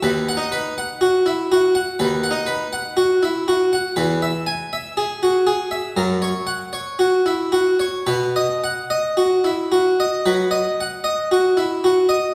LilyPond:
<<
  \new Staff \with { instrumentName = "Harpsichord" } { \time 4/4 \key b \major \tempo 4 = 59 b'16 fis''16 b'16 fis''16 fis'16 e'16 fis'16 fis''16 b'16 fis''16 b'16 fis''16 fis'16 e'16 fis'16 fis''16 | b'16 e''16 gis''16 e''16 gis'16 fis'16 gis'16 e''16 ais'16 cis''16 fis''16 cis''16 fis'16 e'16 fis'16 cis''16 | b'16 dis''16 fis''16 dis''16 fis'16 e'16 fis'16 dis''16 b'16 dis''16 fis''16 dis''16 fis'16 e'16 fis'16 dis''16 | }
  \new Staff \with { instrumentName = "Harpsichord" } { \clef bass \time 4/4 \key b \major \tuplet 3/2 { dis,8 dis'8 r8 } r4 \tuplet 3/2 { dis,8 dis'8 r8 } r4 | e,8 r4. fis,8 r4. | b,8 r4. fis8 r4. | }
>>